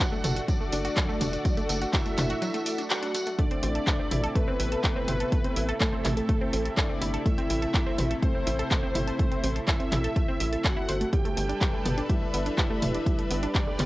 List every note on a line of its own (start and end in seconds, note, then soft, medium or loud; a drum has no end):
0.00 0.12 F#3 loud
0.00 3.35 A3 medium
0.00 3.35 D4 medium
0.00 0.12 F#4 medium
0.00 0.39 F#4 loud
0.00 3.35 F#4 loud
0.00 0.39 F#5 loud
0.12 0.21 A3 loud
0.12 0.21 A4 medium
0.12 tambourine soft
0.24 0.40 F#1 loud
0.24 0.33 A3 medium
0.24 0.33 A4 medium
0.24 mid tom loud
0.24 open hi-hat medium
0.24 tambourine medium
0.36 0.45 F#4 medium
0.36 0.45 F#5 medium
0.36 closed hi-hat soft
0.36 tambourine soft
0.48 0.54 F#3 medium
0.48 1.84 D4 loud
0.48 0.54 F#4 medium
0.48 1.84 D5 loud
0.48 kick loud
0.48 closed hi-hat soft
0.48 tambourine medium
0.61 0.69 A3 medium
0.61 0.69 A4 medium
0.61 tambourine soft
0.72 0.89 F#1 medium
0.72 0.82 D4 medium
0.72 0.82 D5 medium
0.72 open hi-hat loud
0.72 tambourine medium
0.85 0.94 F#4 loud
0.85 0.94 F#5 medium
0.85 closed hi-hat soft
0.85 tambourine soft
0.97 1.06 F#3 loud
0.97 1.06 F#4 medium
0.97 kick loud
0.97 clap loud
0.97 closed hi-hat soft
0.97 tambourine medium
1.09 1.20 A3 loud
1.09 1.20 A4 medium
1.09 tambourine soft
1.21 1.37 E1 loud
1.21 1.33 D4 medium
1.21 1.33 D5 medium
1.21 mid tom medium
1.21 open hi-hat medium
1.21 tambourine medium
1.33 1.42 F#4 medium
1.33 1.42 F#5 medium
1.33 closed hi-hat soft
1.33 tambourine soft
1.45 1.57 F#3 loud
1.45 1.57 F#4 medium
1.45 kick loud
1.45 closed hi-hat soft
1.45 tambourine soft
1.57 1.66 A3 loud
1.57 1.66 A4 medium
1.57 closed hi-hat soft
1.57 tambourine soft
1.69 1.85 F#1 loud
1.69 1.78 A3 medium
1.69 1.78 A4 medium
1.69 open hi-hat loud
1.69 tambourine loud
1.82 1.90 F#4 medium
1.82 1.91 F#5 medium
1.82 closed hi-hat soft
1.82 tambourine soft
1.93 1.99 F#3 medium
1.93 2.81 E4 loud
1.93 1.99 F#4 medium
1.93 2.81 E5 loud
1.93 kick loud
1.93 clap loud
1.93 closed hi-hat soft
1.93 tambourine soft
2.06 2.15 A3 medium
2.06 2.15 A4 medium
2.06 closed hi-hat soft
2.06 tambourine soft
2.18 2.34 F#1 loud
2.18 2.27 D4 medium
2.18 2.27 D5 medium
2.18 clap medium
2.18 mid tom medium
2.18 open hi-hat medium
2.18 tambourine loud
2.30 2.39 F#4 loud
2.30 2.39 F#5 medium
2.30 closed hi-hat soft
2.30 tambourine soft
2.42 2.51 F#3 loud
2.42 2.51 F#4 medium
2.42 closed hi-hat soft
2.42 tambourine soft
2.54 2.65 A3 loud
2.54 2.66 A4 medium
2.54 closed hi-hat soft
2.54 tambourine soft
2.66 2.72 D5 medium
2.66 2.72 D6 medium
2.66 open hi-hat loud
2.66 tambourine medium
2.78 2.84 D4 medium
2.78 2.84 D5 medium
2.78 closed hi-hat soft
2.78 tambourine soft
2.90 3.35 F#4 loud
2.90 3.35 F#5 medium
2.90 2.99 F#5 medium
2.90 2.99 F#6 medium
2.90 clap loud
2.90 closed hi-hat soft
2.90 tambourine medium
3.03 3.11 D4 medium
3.03 3.11 D5 medium
3.03 closed hi-hat soft
3.03 tambourine soft
3.14 3.26 A3 medium
3.14 3.25 A4 medium
3.14 open hi-hat medium
3.14 tambourine medium
3.26 3.36 A3 medium
3.26 3.36 A4 medium
3.26 closed hi-hat soft
3.26 tambourine soft
3.39 11.09 C3 medium
3.39 3.50 A3 loud
3.39 11.09 A3 medium
3.39 4.37 D4 loud
3.39 11.09 E4 medium
3.39 3.50 A4 medium
3.39 4.35 D5 loud
3.39 kick loud
3.39 closed hi-hat soft
3.51 3.60 C4 loud
3.51 3.60 C5 medium
3.51 closed hi-hat soft
3.63 3.79 A1 loud
3.63 3.72 C4 medium
3.63 3.72 C5 medium
3.63 open hi-hat loud
3.75 3.84 A4 medium
3.75 3.84 A5 medium
3.75 closed hi-hat soft
3.87 3.93 A3 medium
3.87 3.93 A4 medium
3.87 kick loud
3.87 clap loud
3.87 closed hi-hat soft
3.99 4.08 C4 medium
3.99 4.08 C5 medium
4.11 4.27 A1 loud
4.11 4.20 E4 medium
4.11 4.20 E5 medium
4.11 mid tom medium
4.11 open hi-hat medium
4.23 4.32 A4 loud
4.23 4.32 A5 medium
4.23 closed hi-hat soft
4.35 4.45 A3 loud
4.35 5.71 B3 loud
4.35 4.45 A4 medium
4.35 5.71 B4 loud
4.35 kick loud
4.35 closed hi-hat soft
4.48 4.59 C4 loud
4.48 4.59 C5 medium
4.60 4.76 A1 medium
4.60 4.71 E4 medium
4.60 4.71 E5 medium
4.60 open hi-hat loud
4.72 4.81 A4 medium
4.72 4.81 A5 medium
4.72 closed hi-hat soft
4.84 4.95 A3 loud
4.84 4.95 A4 medium
4.84 kick loud
4.84 clap loud
4.84 closed hi-hat soft
4.96 5.05 C4 loud
4.96 5.05 C5 medium
5.08 5.24 G1 loud
5.08 5.17 C4 medium
5.08 5.17 C5 medium
5.08 mid tom medium
5.08 open hi-hat medium
5.20 5.29 A4 medium
5.20 5.29 A5 medium
5.20 closed hi-hat soft
5.32 5.38 A3 medium
5.32 5.38 A4 medium
5.32 kick loud
5.32 closed hi-hat soft
5.44 5.53 C4 medium
5.44 5.53 C5 medium
5.44 closed hi-hat soft
5.56 5.73 A1 loud
5.56 5.66 E4 medium
5.56 5.66 E5 medium
5.56 open hi-hat loud
5.69 5.78 A4 loud
5.69 5.78 A5 medium
5.69 closed hi-hat soft
5.80 6.68 A3 loud
5.80 5.90 A3 loud
5.80 6.68 A4 loud
5.80 5.90 A4 medium
5.80 kick loud
5.80 clap loud
5.80 closed hi-hat soft
5.93 6.04 C4 loud
5.93 6.04 C5 medium
6.05 6.21 A1 loud
6.05 6.16 E4 medium
6.05 6.16 E5 medium
6.05 clap medium
6.05 mid tom medium
6.05 open hi-hat medium
6.17 6.26 A4 medium
6.17 6.26 A5 medium
6.17 closed hi-hat soft
6.29 6.41 A3 loud
6.29 6.41 A4 medium
6.29 kick loud
6.29 closed hi-hat soft
6.41 6.50 C4 loud
6.41 6.50 C5 medium
6.53 6.69 A1 medium
6.53 6.62 C4 medium
6.53 6.62 C5 medium
6.53 open hi-hat loud
6.65 6.74 A4 medium
6.65 6.74 A5 medium
6.65 closed hi-hat soft
6.77 6.83 A3 medium
6.77 7.22 D4 loud
6.77 6.83 A4 medium
6.77 7.22 D5 loud
6.77 kick loud
6.77 clap loud
6.77 closed hi-hat soft
6.89 6.98 C4 medium
6.89 6.98 C5 medium
7.01 7.18 G1 loud
7.01 7.11 E4 medium
7.01 7.11 E5 medium
7.01 open hi-hat medium
7.14 7.23 A4 loud
7.14 7.23 A5 medium
7.14 closed hi-hat soft
7.26 7.35 A3 loud
7.26 8.13 E4 loud
7.26 7.35 A4 medium
7.26 8.13 E5 loud
7.26 kick loud
7.26 closed hi-hat soft
7.38 7.49 C4 loud
7.38 7.49 C5 medium
7.38 closed hi-hat soft
7.50 7.66 A1 loud
7.50 7.62 E4 medium
7.50 7.62 E5 medium
7.50 open hi-hat loud
7.62 7.71 A4 medium
7.62 7.71 A5 medium
7.62 closed hi-hat soft
7.74 7.86 A3 loud
7.74 7.86 A4 medium
7.74 kick loud
7.74 clap loud
7.74 closed hi-hat soft
7.86 7.95 C4 loud
7.86 7.95 C5 medium
7.98 8.14 A1 loud
7.98 8.07 C4 medium
7.98 8.07 C5 medium
7.98 mid tom medium
7.98 open hi-hat loud
8.11 8.20 A4 medium
8.11 8.20 A5 medium
8.11 closed hi-hat soft
8.22 8.28 A3 medium
8.22 9.58 C4 loud
8.22 8.28 A4 medium
8.22 9.58 C5 loud
8.22 kick loud
8.22 closed hi-hat soft
8.35 8.44 C4 medium
8.35 8.44 C5 medium
8.47 8.63 A1 medium
8.47 8.56 E4 medium
8.47 8.56 E5 medium
8.47 open hi-hat loud
8.59 8.68 A4 loud
8.59 8.68 A5 medium
8.59 closed hi-hat soft
8.71 8.80 A3 loud
8.71 8.80 A4 medium
8.71 kick loud
8.71 clap loud
8.71 closed hi-hat soft
8.83 8.94 C4 loud
8.83 8.94 C5 medium
8.95 9.11 G1 loud
8.95 9.07 E4 medium
8.95 9.07 E5 medium
8.95 mid tom medium
8.95 open hi-hat loud
9.07 9.16 A4 medium
9.07 9.16 A5 medium
9.07 closed hi-hat soft
9.19 9.31 A3 loud
9.19 9.31 A4 medium
9.19 kick loud
9.19 closed hi-hat soft
9.31 9.40 C4 loud
9.31 9.40 C5 medium
9.31 closed hi-hat soft
9.43 9.60 A1 loud
9.43 9.53 C4 medium
9.43 9.53 C5 medium
9.43 open hi-hat loud
9.56 9.65 A4 medium
9.56 9.65 A5 medium
9.56 closed hi-hat soft
9.68 9.73 A3 medium
9.68 10.66 E4 medium
9.68 9.73 A4 medium
9.68 10.64 E5 loud
9.68 kick loud
9.68 clap loud
9.68 closed hi-hat soft
9.80 9.89 C4 medium
9.80 9.89 C5 medium
9.80 closed hi-hat soft
9.92 10.08 A1 loud
9.92 10.01 E4 medium
9.92 10.01 E5 medium
9.92 clap medium
9.92 mid tom medium
9.92 open hi-hat medium
10.04 10.13 A4 loud
10.04 10.13 A5 medium
10.04 closed hi-hat soft
10.16 10.25 A3 loud
10.16 10.25 A4 medium
10.16 kick loud
10.16 closed hi-hat soft
10.28 10.40 C4 loud
10.28 10.40 C5 medium
10.40 10.56 A1 medium
10.40 10.49 E5 loud
10.40 10.49 E6 medium
10.40 open hi-hat loud
10.53 10.61 A4 medium
10.53 10.61 A5 medium
10.53 closed hi-hat soft
10.64 10.76 A3 medium
10.64 11.09 F#4 loud
10.64 10.76 A4 medium
10.64 11.09 F#5 medium
10.64 kick loud
10.64 clap loud
10.64 closed hi-hat soft
10.77 10.82 E4 loud
10.77 10.82 E5 medium
10.89 11.05 G1 loud
10.89 11.00 C5 medium
10.89 11.00 C6 medium
10.89 open hi-hat medium
11.01 11.06 A3 medium
11.01 11.06 A4 medium
11.01 closed hi-hat soft
11.13 13.86 G3 medium
11.13 11.24 G3 loud
11.13 13.86 D4 medium
11.13 12.00 G4 loud
11.13 11.24 G4 medium
11.13 13.04 A4 medium
11.13 13.86 B4 loud
11.13 12.00 G5 loud
11.13 kick loud
11.13 closed hi-hat soft
11.25 11.34 A3 loud
11.25 11.34 A4 medium
11.25 closed hi-hat soft
11.37 11.53 G1 loud
11.37 11.46 A3 medium
11.37 11.46 A4 medium
11.37 open hi-hat loud
11.49 11.58 D4 medium
11.49 11.58 D5 medium
11.49 closed hi-hat soft
11.61 11.67 G3 medium
11.61 11.67 G4 medium
11.61 kick loud
11.61 clap loud
11.61 closed hi-hat soft
11.74 11.82 A3 medium
11.74 11.82 A4 medium
11.85 12.01 G1 loud
11.85 11.95 B3 medium
11.85 11.95 B4 medium
11.85 mid tom medium
11.85 open hi-hat medium
11.98 12.07 D4 loud
11.98 12.07 D5 medium
11.98 closed hi-hat soft
12.09 12.19 G3 loud
12.09 13.45 E4 loud
12.09 12.19 G4 medium
12.09 13.45 E5 loud
12.09 kick loud
12.09 closed hi-hat soft
12.22 12.27 A3 medium
12.22 12.27 A4 medium
12.34 12.50 G1 medium
12.34 12.45 B3 medium
12.34 12.45 B4 medium
12.34 open hi-hat loud
12.46 12.55 D4 medium
12.46 12.55 D5 medium
12.46 closed hi-hat soft
12.58 12.70 G3 loud
12.58 12.70 G4 medium
12.58 kick loud
12.58 clap loud
12.58 closed hi-hat soft
12.70 12.79 A3 loud
12.70 12.79 A4 medium
12.82 12.98 D1 loud
12.82 12.91 A3 medium
12.82 12.91 A4 medium
12.82 mid tom medium
12.82 open hi-hat loud
12.95 13.03 D4 medium
12.95 13.03 D5 medium
12.95 closed hi-hat soft
13.06 13.12 G3 medium
13.06 13.86 G4 medium
13.06 13.12 G4 medium
13.06 kick loud
13.06 closed hi-hat soft
13.19 13.28 A3 medium
13.19 13.28 A4 medium
13.19 closed hi-hat soft
13.31 13.47 G1 loud
13.31 13.40 B3 medium
13.31 13.40 B4 medium
13.31 open hi-hat loud
13.43 13.52 D4 loud
13.43 13.52 D5 medium
13.43 closed hi-hat soft
13.55 13.64 G3 loud
13.55 13.86 D4 loud
13.55 13.64 G4 medium
13.55 13.86 D5 loud
13.55 kick loud
13.55 clap loud
13.55 closed hi-hat soft
13.67 13.72 A3 medium
13.67 13.72 A4 medium
13.79 13.86 G1 loud
13.79 13.86 B3 medium
13.79 13.86 B4 medium
13.79 clap medium
13.79 mid tom medium
13.79 open hi-hat medium